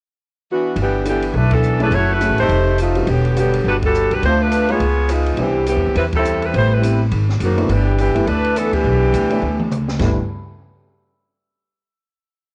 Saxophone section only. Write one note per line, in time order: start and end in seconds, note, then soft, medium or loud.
0.52 0.77 E3 medium
0.52 0.76 B3 medium
0.52 0.77 D4 medium
0.52 0.77 F#4 medium
0.81 1.06 E3 medium
0.81 1.06 B3 medium
0.81 1.06 D4 medium
0.81 1.06 G4 medium
1.08 1.34 E3 medium
1.08 1.34 B3 medium
1.08 1.34 D4 medium
1.08 1.34 G4 medium
1.36 1.52 A3 medium
1.36 1.52 D4 medium
1.36 1.52 E4 medium
1.36 1.52 B4 medium
1.53 1.81 E3 medium
1.53 1.81 B3 medium
1.53 1.81 D4 medium
1.53 1.81 A4 loud
1.82 1.92 A3 medium
1.82 1.92 D4 medium
1.82 1.93 E4 medium
1.82 1.92 B4 loud
1.94 2.10 A3 medium
1.94 2.10 E4 medium
1.94 2.10 F#4 medium
1.94 2.10 C#5 loud
2.13 2.39 A3 medium
2.13 2.40 E4 medium
2.13 2.40 F#4 medium
2.13 2.40 B4 loud
2.40 2.77 A3 medium
2.40 2.77 D#4 medium
2.40 2.77 G4 medium
2.40 2.77 C5 medium
2.80 3.07 A3 medium
2.80 3.06 C4 medium
2.80 3.07 D#4 medium
2.80 3.06 F4 medium
3.09 3.37 D3 medium
3.09 3.37 F#3 medium
3.09 3.38 B3 medium
3.09 3.37 G4 loud
3.39 3.65 D3 medium
3.39 3.65 F#3 medium
3.39 3.65 B3 medium
3.39 3.65 G4 medium
3.67 3.75 G3 medium
3.67 3.75 D4 medium
3.67 3.75 F#4 medium
3.67 3.75 B4 medium
3.85 4.11 G3 medium
3.85 4.10 D4 medium
3.85 4.10 F#4 medium
3.85 4.11 A4 loud
4.13 4.24 G3 medium
4.13 4.24 D4 medium
4.13 4.24 F#4 medium
4.13 4.24 B4 medium
4.25 4.40 A3 medium
4.25 4.40 D4 medium
4.25 4.40 F4 medium
4.25 4.40 C5 loud
4.41 4.70 A3 medium
4.41 4.69 D4 medium
4.41 4.70 F4 medium
4.41 4.70 B4 loud
4.70 5.10 B3 medium
4.70 5.09 F4 medium
4.70 5.10 G#4 medium
4.70 5.10 C#5 loud
5.10 5.39 G#3 medium
5.10 5.39 B3 medium
5.10 5.39 D#4 medium
5.10 5.39 F4 medium
5.39 5.66 E3 medium
5.39 5.66 B3 medium
5.39 5.66 C4 medium
5.39 5.66 G4 medium
5.68 5.95 E3 medium
5.68 5.95 B3 medium
5.68 5.95 C4 medium
5.68 5.95 G4 medium
5.97 6.05 G3 medium
5.97 6.05 C4 medium
5.97 6.05 E4 medium
5.97 6.05 B4 medium
6.16 6.42 G3 medium
6.16 6.42 C4 medium
6.16 6.42 E4 medium
6.16 6.42 A4 medium
6.45 6.55 G3 medium
6.45 6.56 C4 medium
6.45 6.55 E4 medium
6.45 6.56 B4 medium
6.56 6.71 G3 medium
6.56 6.71 B3 medium
6.56 6.71 E4 medium
6.56 6.71 C5 medium
6.73 7.01 G3 medium
6.73 7.01 C4 medium
6.73 7.01 E4 medium
6.73 7.01 B4 medium
7.43 7.69 D#3 medium
7.43 7.69 A#3 medium
7.43 7.69 C4 medium
7.43 7.69 F#4 medium
7.71 7.99 E3 medium
7.71 7.99 B3 medium
7.71 7.98 D4 medium
7.71 7.98 G4 medium
7.99 8.26 E3 medium
7.99 8.26 B3 medium
7.99 8.26 D4 medium
7.99 8.26 G4 medium
8.27 8.56 A3 medium
8.27 8.57 D4 medium
8.27 8.56 E4 medium
8.27 8.56 B4 loud
8.57 8.73 E3 medium
8.57 8.73 B3 medium
8.57 8.73 D4 medium
8.57 8.74 A4 medium
8.74 9.72 E3 medium
8.74 9.72 B3 medium
8.74 9.72 D4 medium
8.74 9.72 G4 medium